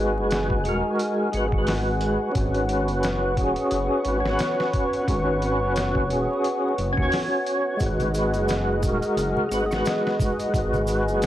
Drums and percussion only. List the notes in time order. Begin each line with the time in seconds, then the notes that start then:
0.31 snare, closed hi-hat
0.50 kick
0.65 closed hi-hat
0.99 closed hi-hat
1.33 closed hi-hat
1.52 kick
1.67 snare, open hi-hat
2.01 closed hi-hat
2.35 kick, closed hi-hat
2.54 closed hi-hat
2.69 closed hi-hat
2.88 closed hi-hat
3.03 snare, closed hi-hat
3.37 kick, closed hi-hat
3.56 closed hi-hat
3.71 closed hi-hat
4.05 closed hi-hat
4.26 snare
4.39 snare, closed hi-hat
4.60 snare
4.73 kick, closed hi-hat
4.93 closed hi-hat
5.08 kick, closed hi-hat
5.42 closed hi-hat
5.76 snare, closed hi-hat
5.95 kick
6.10 closed hi-hat
6.44 closed hi-hat
6.78 closed hi-hat
6.97 kick
7.12 snare, open hi-hat
7.46 closed hi-hat
7.80 kick, closed hi-hat, maracas
8.00 closed hi-hat, low conga, maracas
8.14 closed hi-hat, maracas
8.34 closed hi-hat, maracas
8.48 snare, closed hi-hat, maracas
8.83 kick, closed hi-hat, maracas
9.02 closed hi-hat, maracas
9.17 closed hi-hat, maracas
9.37 low conga
9.51 closed hi-hat, maracas
9.71 snare, maracas
9.85 snare, closed hi-hat, maracas
10.07 snare
10.20 kick, closed hi-hat, low conga, maracas
10.39 closed hi-hat, maracas
10.54 kick, closed hi-hat, maracas
10.73 low conga, maracas
10.87 closed hi-hat, maracas
11.08 maracas
11.22 closed hi-hat, maracas